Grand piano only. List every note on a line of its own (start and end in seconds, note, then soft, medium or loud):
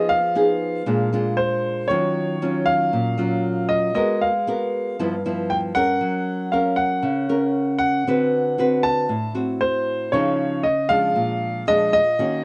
0.00 0.11 D#5 medium
0.09 1.08 F5 medium
1.37 1.91 C5 medium
1.88 2.68 C#5 medium
2.66 3.72 F5 medium
3.69 3.94 D#5 medium
3.95 4.22 D#5 medium
4.21 5.20 F5 medium
5.50 5.56 G5 medium
5.75 6.55 F#5 loud
6.52 6.79 F5 medium
6.76 7.77 F#5 medium
7.79 8.86 F#5 medium
8.83 9.31 A5 medium
9.61 10.14 C5 medium
10.12 10.65 C#5 medium
10.63 10.90 D#5 medium
10.89 11.62 F5 loud
11.68 11.92 D#5 loud
11.93 12.44 D#5 loud